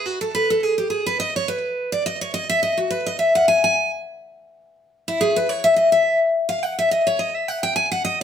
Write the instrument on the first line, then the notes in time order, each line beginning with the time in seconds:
steel-string acoustic guitar
0.05 F#4
0.21 A4
0.35 B4
0.50 A4
0.63 G#4
0.78 G4
0.90 G#4
1.06 B4
1.20 D#5
1.36 C#5
1.48 B4
1.92 D5
2.06 D#5
2.21 C#5
2.34 D#5
2.50 E5
2.63 D#5
2.77 F#4
2.91 B4
3.06 D#5
3.19 E5
3.35 F#5
3.48 G#5
3.64 G#5
5.08 E4
5.21 G#4
5.36 B4
5.49 C#5
5.64 E5
5.76 D#5
5.92 E5
6.49 F5
6.63 F#5
6.79 E5
6.91 D#5
7.07 C#5
7.19 D#5
7.35 E5
7.48 F#5
7.63 G5
7.76 G#5
7.92 F#5
8.05 D#5